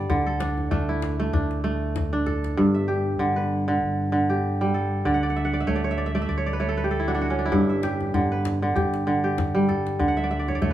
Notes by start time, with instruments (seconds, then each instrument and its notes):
Already playing: kora G3 G4 D5
0.10 fingered electric bass D2, kora D3, djembe bass
0.27 kora A4
0.40 kora D4, djembe slap
0.58 djembe tone
0.71 fingered electric bass D2, kora A3 D4, djembe bass
0.89 kora E4
1.02 djembe slap
1.20 kora A3
1.33 fingered electric bass D2, kora D4, djembe tone, djembe bass
1.51 djembe slap
1.64 kora A3
1.96 djembe slap, djembe bass
2.13 kora D4
2.26 kora A4, djembe tone
2.44 djembe slap
2.57 fingered electric bass G1, kora G2
2.75 kora E5
2.88 kora G4
3.19 fingered electric bass G1, kora D3
3.36 kora B4
3.68 kora D3
3.82 fingered electric bass G1
4.12 kora D3
4.30 kora G4
4.61 kora G3
4.74 kora A4
5.05 fingered electric bass D2, kora D3 D5
5.14 kora F#5
5.23 kora D5
5.30 kora F#5
5.36 kora E5
5.45 kora F#5
5.53 kora D5
5.60 kora E5
5.67 fingered electric bass D2, kora A3 C#5
5.76 kora D5
5.84 kora C#5
5.91 kora E5
5.98 kora D5
6.06 kora E5
6.15 kora A3 D5
6.22 kora E5
6.29 fingered electric bass D2, kora D5
6.38 kora C#5
6.46 kora D5
6.53 kora B4
6.60 kora A3 C#5
6.69 kora A4
6.77 kora B4
6.84 kora G4
6.91 kora A4
7.00 kora E4
7.08 kora D4 F#4
7.15 kora D4
7.21 kora F#4
7.30 kora C#4
7.39 kora D4
7.46 kora E4
7.52 fingered electric bass G1, kora G2, djembe bass
7.69 kora E5
7.83 kora G4, djembe slap
8.01 djembe tone
8.14 fingered electric bass G1, kora D3, djembe bass
8.32 kora B4
8.45 djembe slap
8.62 kora D3
8.76 fingered electric bass G1, kora G4, djembe slap, djembe tone, djembe bass
8.94 djembe slap
9.07 kora D3
9.24 kora G4
9.38 djembe slap, djembe bass
9.55 kora G3
9.69 kora A4, djembe tone
9.87 djembe slap
9.99 fingered electric bass D2, kora D3, djembe slap, djembe bass
10.08 kora F#5
10.17 kora E5, djembe slap
10.24 kora D5
10.31 kora E5
10.39 kora D5
10.48 kora C#5, djembe tone
10.55 kora D5
10.62 fingered electric bass D2, kora A3 C#5, djembe slap, djembe bass